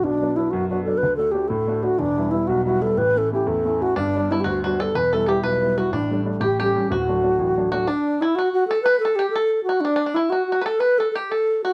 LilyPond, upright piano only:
\new Staff \with { instrumentName = "Upright piano" } { \time 6/8 \key d \major \tempo 4. = 122 <b,, b,>8 <fis b d'>8 <fis b d'>8 fis,8 <fis b d'>8 <fis b d'>8 | <d, d>8 <a d' fis'>8 <a d' fis'>8 a,8 <a d' fis'>8 <a d' fis'>8 | <e,, e,>8 <g b e'>8 <g b e'>8 b,,8 <g b e'>8 <g b e'>8 | <a,, a,>8 <a cis' e'>8 <a cis' e'>8 e,8 <a cis' e'>8 <a cis' e'>8 |
<g,, g,>8 <g b d'>8 <g b d'>8 d,8 <g b d'>8 <g b d'>8 | <e,, e,>8 <g b e'>8 <g b e'>8 b,,8 <g b e'>8 <g b e'>8 | <a,, a,>8 <g a d'>8 <g a d'>8 <a,, a,>8 <g a cis'>8 <g a cis'>8 | <d,, d,>8 <fis a d'>8 <fis a d'>8 a,,8 <fis a d'>8 <fis a d'>8 |
r2. | r2. | r2. | r2. | }